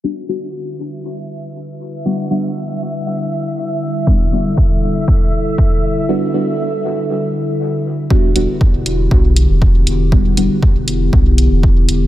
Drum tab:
HH |--------|--------|--------|--------|
BD |--------|--------|o-o-o-o-|--------|

HH |-x-x-x-x|-x-x-x-x|
BD |o-o-o-o-|o-o-o-o-|